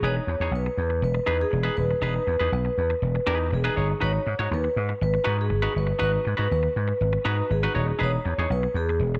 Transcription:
0.02 E1 D#4 G#4 B4 C#5
0.17 muted clean electric guitar stroke
0.27 E2, muted clean electric guitar stroke
0.40 E2 D#4 G#4 C#5
0.51 B1
0.56 B4
0.66 muted clean electric guitar stroke
0.78 E2
0.90 muted clean electric guitar stroke
1.02 E1 B4
1.15 muted clean electric guitar stroke
1.26 E2 D#4 G#4 B4
1.39 G#4, muted clean electric guitar stroke
1.51 E1, muted clean electric guitar stroke
1.63 D#4 G#4 B4
1.77 D#1 B4, muted clean electric guitar stroke
1.91 muted clean electric guitar stroke
2.02 E1 D#4 G#4 B4
2.16 muted clean electric guitar stroke
2.27 E2, muted clean electric guitar stroke
2.40 E2 D#4 G#4 B4
2.52 B1 B4, muted clean electric guitar stroke
2.65 muted clean electric guitar stroke
2.78 E2
2.90 muted clean electric guitar stroke
3.02 E1
3.15 muted clean electric guitar stroke
3.27 E2 D#4 G#4 B4
3.40 muted clean electric guitar stroke
3.50 E1 G#4, muted clean electric guitar stroke
3.64 D#4 G#4 B4
3.76 G1 D#4 G#4 C#5
3.90 muted clean electric guitar stroke
4.00 G#1 D#4 F#4 B4 C#5
4.13 muted clean electric guitar stroke
4.26 G#2, muted clean electric guitar stroke
4.39 G#2 D#4 F#4 C#5
4.51 D#2 B4, muted clean electric guitar stroke
4.64 muted clean electric guitar stroke
4.76 G#2
4.89 muted clean electric guitar stroke
5.01 G#1 B4
5.14 muted clean electric guitar stroke
5.24 G#2 D#4 F#4 B4
5.38 G#4, muted clean electric guitar stroke
5.50 G#1, muted clean electric guitar stroke
5.62 D#4 F#4 B4
5.74 G1 B4, muted clean electric guitar stroke
5.87 muted clean electric guitar stroke
5.99 G#1 D#4 F#4 B4
6.03 B4
6.13 muted clean electric guitar stroke
6.25 G#2, muted clean electric guitar stroke
6.37 G#2 D#4 F#4 B4
6.50 D#2 B4, muted clean electric guitar stroke
6.63 muted clean electric guitar stroke
6.76 G#2
6.88 muted clean electric guitar stroke
7.01 G#1
7.13 muted clean electric guitar stroke
7.25 G#2 D#4 F#4 B4
7.38 muted clean electric guitar stroke
7.50 G#1 G#4, muted clean electric guitar stroke
7.63 D#4 F#4 B4
7.74 D#1 D#4 F#4 C#5
7.88 muted clean electric guitar stroke
7.99 E1 D#4 G#4 B4
8.03 C#5
8.13 muted clean electric guitar stroke
8.25 E2, muted clean electric guitar stroke
8.38 E2 D#4 G#4 C#5
8.50 B1 B4, muted clean electric guitar stroke
8.63 muted clean electric guitar stroke
8.74 E2 G#4
8.89 muted clean electric guitar stroke
9.00 E1
9.15 muted clean electric guitar stroke

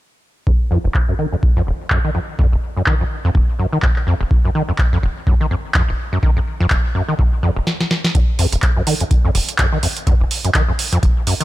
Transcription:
0.47 F2, kick
0.71 F2
0.84 F1
0.94 kick, clap
1.08 F#2
1.19 D#3
1.32 F2
1.43 kick
1.56 F2
1.67 F1
1.90 F#2, kick, clap
2.04 D#3
2.15 F2
2.39 F2, kick
2.52 F1
2.77 F#2
2.86 D#3, kick, clap
3.00 F2
3.24 F2
3.35 F1, kick
3.59 F#2
3.72 D#3
3.82 F2, kick, clap
3.96 clap
4.07 F2
4.21 F1
4.31 kick
4.45 F#2
4.55 D#3
4.69 F2
4.78 kick, clap
4.93 F2
5.03 F1
5.27 F#2, kick
5.41 D#3
5.51 F2
5.74 F2, kick, clap
5.89 F1
6.13 F#2
6.23 D#3, kick
6.36 F2
6.60 F2
6.70 F1, kick, clap
6.95 F#2
7.08 D#3
7.19 F2, kick
7.43 F2
7.56 F1
7.67 snare
7.81 snare
7.91 snare
8.04 snare
8.15 F2, kick, closed hi-hat
8.39 F2, open hi-hat
8.52 F1, closed hi-hat
8.62 kick, clap, closed hi-hat
8.76 F#2
8.87 D#3, open hi-hat
9.00 F2, closed hi-hat
9.11 kick, closed hi-hat
9.25 F2
9.35 F1, open hi-hat
9.49 closed hi-hat
9.58 F#2, kick, clap, closed hi-hat
9.72 D#3
9.83 F2, open hi-hat
9.97 closed hi-hat
10.07 F2, kick, closed hi-hat
10.21 F1
10.31 open hi-hat
10.45 F#2, closed hi-hat
10.54 D#3, kick, clap, closed hi-hat
10.68 F2
10.79 open hi-hat
10.92 F2, closed hi-hat
11.03 F1, kick, closed hi-hat
11.27 F#2, open hi-hat
11.40 D#3, closed hi-hat

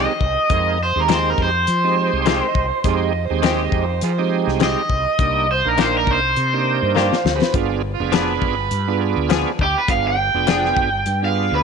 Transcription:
Already playing: D#3 G#3 C4 D#4 G4 D#5
0.20 C2, kick
0.50 F2 G#3 C4 D#4 A#4, kick, closed hi-hat
0.83 C5
0.95 D#2 G#3 C4 D#4 G4
1.00 A#4
1.08 D#3 G#3 C4 G4, snare, closed hi-hat
1.13 C5
1.30 A#4
1.38 F2, kick
1.43 C5
1.67 F3, closed hi-hat
1.84 G#3 C4 D#4 G4
2.13 C2
2.26 D#3 G#3 C4 F4 G4 G#4 C5, snare, closed hi-hat
2.48 D#5
2.55 C2, kick
2.68 C5
2.84 F2 G#3 C4 D#4 F4 G4 G#4 C5, kick, closed hi-hat
3.06 D#5
3.25 C5
3.30 D#2 G#3 C4 D#4 G4
3.43 D#3 G#3 C4 G4 C5, snare, closed hi-hat
3.64 D#5
3.72 F2, kick
3.84 C5
4.01 F3 F4 G#4 C5, closed hi-hat
4.18 G#3 C4 D#4 G4
4.47 C2, snare
4.60 D#3 G#3 C4 G4 D#5, snare, closed hi-hat
4.89 C2, kick
5.19 C2 A#3 D4 D#4 G4, kick, closed hi-hat
5.51 C5
5.65 A#1 A#3 D4 D#4 A#4
5.78 D#3 A#3 D4 G4, snare, closed hi-hat
5.82 C5
5.97 A#4
6.07 C2, kick
6.11 C5
6.36 C3, closed hi-hat
6.53 A#3 D4 D#4 G4
6.82 G2
6.95 D#3 A#3 D4 G4 F5, snare
7.13 snare
7.25 D2, snare
7.35 F#4 G#4 B4
7.42 snare
7.54 G1 B3 D4 F4 G#4, kick, closed hi-hat
7.94 F4
8.00 F1 B3 D4 F4 G#4
8.12 F3 B3 D4 G#4 B4, snare, closed hi-hat
8.42 G1, kick
8.71 G2, closed hi-hat
8.88 B3 D4 F4 G#4
9.17 D2
9.29 F3 B3 D4 G#4, snare, closed hi-hat
9.59 D2 G4, kick
9.78 B4
9.88 G1 B3 D4 F4 G#4 F5, kick, closed hi-hat
10.07 G5
10.34 F1 B3 D4 F4 G#4
10.47 F3 B3 D4 G#4, snare, closed hi-hat
10.65 snare
10.77 G1, kick
11.06 G2, closed hi-hat
11.22 B3 D4 F4 G#4 F5
11.52 D2 B4

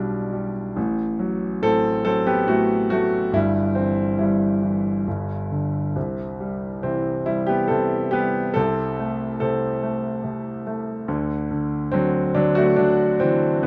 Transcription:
Already playing: B1 B2 G3 D4 E4
0.33 G3
0.76 A1 A2
1.19 F#3
1.62 A2 C4 A4
2.04 F#3 C4 A4
2.27 B3 G4
2.46 A2 A3 F#4
2.90 F#3 A3 F#4
3.32 G1 G2 G3 E4
3.75 E3 C4
4.19 G2 G3 E4
4.62 E3
5.07 G1 G2
5.52 D3
5.96 C2 C3
6.40 G3
6.83 C3 E3 C4
7.26 G3 E4
7.47 B3 G4
7.68 C3 C4 A4
8.11 G3 B3 G4
8.54 C2 C3 C4 A4
9.00 A3
9.40 C3 C4 A4
9.83 A3
10.24 C3
10.67 A3
11.08 D2 D3
11.51 D3
11.91 D3 F#3 C4
12.34 D3 F#3 D4
12.55 A3 F#4
12.76 D3 F#3 D4
13.20 D3 E3 C4
13.63 G1 B3

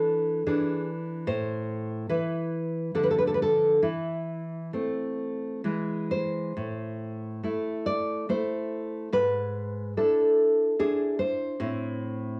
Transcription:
Already playing: E3 D4 A4
0.46 E3 D4 G#4
1.27 A2 C5
2.09 E3 E4 B4
2.95 D3 F3 D4 A4
3.03 B4
3.11 A4
3.18 B4
3.27 A4
3.34 B4
3.42 A4
3.82 E3 E4
4.73 A3 C4
5.64 E3 G#3 E4
6.11 C5
6.57 A2
7.44 A3 E4
7.86 D5
8.29 A3 E4 C5
9.12 G#2 B4
9.97 D4 E4 A4
10.79 D4 E4 G#4
11.19 C5
11.60 A2 C4 E4

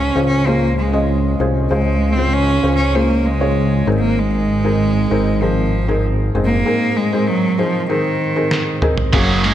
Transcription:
Already playing: C#2 C#3 C#4 F4 G#4 C5
0.16 C#2 C#4 F4 G#4 C5
0.27 C#4
0.46 A#3 C#4 F4 G#4 C5
0.78 G#3
0.93 C#4 F4 G#4 D#5
1.40 C2 C#4 F4 G#4 C5
1.70 C#2 C#3 G#3 C#4 F4 G#4 C5
2.13 C4
2.17 C#4 F4 G#4 C5
2.34 C#4
2.63 C#2 C#4 F4 G#4 C5
2.76 C#4
2.95 A#3 C#4 F4 G#4 C5
3.26 G#3
3.41 C#4 F4 G#4 C#5
3.87 G#1 G#2 C4 D#4 G#4 A#4
3.99 A#3
4.19 G#3
4.64 C4 D#4 G#4 A#4
5.11 G#1 C4 D#4 G#4 A#4
5.42 F3 C4 D#4 G#4 A#4
5.88 C4 D#4 G#4 A#4
6.35 F#1 G#2 C4 D#4 G#4 C5
6.46 A#3
6.66 C4 D#4 G#4 A#4
6.97 G#3
7.12 C4 D#4 G#4 C5
7.28 F#3
7.58 F3 C4 D#4 G#4 C5
7.89 D#3 C4 D#4 G#4 A#4
8.36 C4 D#4 G#4 A#4
8.51 snare
8.82 C4 D#4 G#4 A#4, mid tom
8.97 floor tom
9.13 F#1 F#3 A#3 C#4 F#4 G#4, kick, closed hi-hat, crash
9.43 G#3 A#3 C#4 G#4, closed hi-hat

